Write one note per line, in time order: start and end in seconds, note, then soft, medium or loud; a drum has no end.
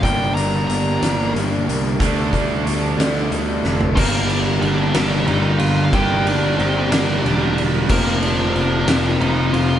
0.01 0.34 G1 loud
0.01 0.98 G2 loud
0.01 0.68 G2 loud
0.01 0.99 D3 medium
0.01 0.68 D3 loud
0.01 1.01 G3 loud
0.01 0.38 G3 loud
0.01 0.98 A#3 loud
0.01 0.36 A#3 loud
0.01 0.98 D4 loud
0.01 0.36 D4 loud
0.01 0.36 G4 loud
0.01 0.34 G5 loud
0.01 kick loud
0.01 closed hi-hat loud
0.35 0.67 G1 medium
0.35 0.68 G3 medium
0.35 0.68 A#3 medium
0.35 0.70 D4 medium
0.35 0.70 G4 medium
0.35 0.66 A#5 medium
0.35 closed hi-hat medium
0.68 1.00 G1 medium
0.68 1.03 G3 medium
0.68 1.02 A#3 medium
0.68 1.02 D4 medium
0.68 1.01 G4 medium
0.68 1.31 A#5 loud
0.68 closed hi-hat medium
0.98 1.33 G1 medium
0.98 1.98 G2 medium
0.98 1.98 D3 medium
0.98 2.00 G3 medium
0.98 1.97 A#3 medium
0.98 2.02 D4 medium
0.98 1.37 G4 medium
1.03 1.35 G3 medium
1.03 1.35 A#3 medium
1.03 1.36 D4 medium
1.03 snare loud
1.03 closed hi-hat loud
1.34 1.66 G1 medium
1.34 1.70 G3 medium
1.34 1.69 A#3 medium
1.34 1.68 D4 medium
1.34 1.67 G4 medium
1.34 closed hi-hat medium
1.68 1.99 C2 medium
1.68 2.00 G3 medium
1.68 1.99 A#3 medium
1.68 2.02 D4 medium
1.68 2.02 G4 medium
1.68 closed hi-hat medium
2.00 2.32 D2 medium
2.00 2.96 D3 loud
2.00 2.66 D3 loud
2.00 2.96 G3 loud
2.00 2.34 G3 loud
2.00 2.97 A3 medium
2.00 2.96 D4 loud
2.00 2.33 D4 medium
2.00 2.32 A4 loud
2.00 kick loud
2.00 closed hi-hat loud
2.33 2.64 D2 medium
2.33 2.66 G3 medium
2.33 2.67 D4 medium
2.33 2.68 A4 medium
2.33 kick medium
2.33 closed hi-hat medium
2.66 2.97 D2 medium
2.66 3.31 D3 medium
2.66 3.01 G3 medium
2.66 2.99 D4 medium
2.66 2.98 A4 medium
2.66 closed hi-hat medium
2.98 3.29 D2 medium
2.98 3.95 D3 medium
2.98 3.95 G3 medium
2.98 3.95 A3 medium
2.98 3.94 D4 medium
2.98 3.32 D4 medium
2.98 3.33 A4 medium
2.98 snare loud
2.98 closed hi-hat loud
3.02 3.32 G3 medium
3.31 3.63 D2 loud
3.31 3.95 D3 medium
3.31 3.66 G3 medium
3.31 3.64 D4 medium
3.31 3.64 A4 medium
3.31 closed hi-hat medium
3.64 3.95 F1 medium
3.64 3.96 G3 medium
3.64 3.95 D4 medium
3.64 3.95 A4 medium
3.64 snare medium
3.81 floor tom medium
3.95 4.58 G1 medium
3.95 5.90 G2 loud
3.95 5.91 D3 loud
3.95 5.91 G3 loud
3.95 5.94 A#3 loud
3.95 4.27 A#3 medium
3.95 5.92 D4 loud
3.95 7.86 G4 medium
3.95 4.30 A#4 loud
3.95 9.79 A#4 medium
3.95 9.79 A#5 medium
3.95 kick loud
3.95 crash loud
4.30 4.39 D4 medium
4.30 4.39 D5 loud
4.30 ride medium
4.62 4.93 G1 loud
4.62 5.25 D4 medium
4.62 5.27 D5 medium
4.62 ride medium
4.94 5.25 G1 medium
4.94 5.90 G2 medium
4.94 5.91 D3 medium
4.94 5.91 G3 medium
4.94 5.93 A#3 medium
4.94 5.90 D4 medium
4.94 snare loud
4.94 ride loud
5.27 5.58 G1 loud
5.27 5.91 G2 medium
5.27 5.91 D3 medium
5.27 5.92 G3 loud
5.27 5.58 D#4 medium
5.27 5.61 D#5 loud
5.27 ride medium
5.58 5.92 G1 medium
5.58 5.83 F4 medium
5.58 5.83 F5 loud
5.58 ride medium
5.85 5.92 F5 medium
5.92 6.24 G1 loud
5.92 7.87 G2 loud
5.92 7.87 D3 loud
5.92 7.88 G3 loud
5.92 7.90 A#3 loud
5.92 7.88 D4 loud
5.92 6.24 G4 medium
5.92 6.27 G5 loud
5.92 kick loud
5.92 ride loud
6.26 6.56 G1 loud
6.26 6.56 D4 medium
6.26 6.57 D5 medium
6.26 ride medium
6.58 7.20 G1 loud
6.58 6.89 C4 medium
6.58 6.91 C5 loud
6.58 ride medium
6.90 7.88 G2 medium
6.90 7.88 D3 medium
6.90 7.87 G3 medium
6.90 7.90 A#3 medium
6.90 7.87 D4 medium
6.90 7.61 D4 medium
6.90 7.61 D5 loud
6.90 snare loud
6.90 ride loud
7.23 7.85 E1 loud
7.23 7.87 G2 medium
7.23 7.88 D3 medium
7.23 7.88 G3 medium
7.23 ride loud
7.58 ride medium
7.88 8.51 F1 medium
7.88 9.79 F2 loud
7.88 9.79 C3 loud
7.88 9.79 F3 loud
7.88 8.20 A#3 medium
7.88 9.79 A#3 loud
7.88 9.79 C4 loud
7.88 9.79 F4 medium
7.88 8.20 A#4 loud
7.88 9.79 C5 medium
7.88 kick loud
7.88 crash loud
8.21 8.53 D4 medium
8.21 8.52 D5 medium
8.21 ride medium
8.54 8.85 F1 medium
8.54 9.16 D4 medium
8.54 9.16 D5 medium
8.54 ride medium
8.86 9.18 F1 medium
8.86 9.79 F2 medium
8.86 9.79 C3 medium
8.86 9.79 F3 medium
8.86 9.79 A#3 medium
8.86 9.79 C4 medium
8.86 snare loud
8.86 ride loud
9.19 9.51 F1 loud
9.19 9.79 F2 loud
9.19 9.79 C3 loud
9.19 9.79 F3 medium
9.19 9.51 D#4 medium
9.19 9.54 D#5 medium
9.19 ride medium
9.53 9.79 F1 medium
9.53 9.79 F4 medium
9.53 9.79 F5 loud
9.53 ride medium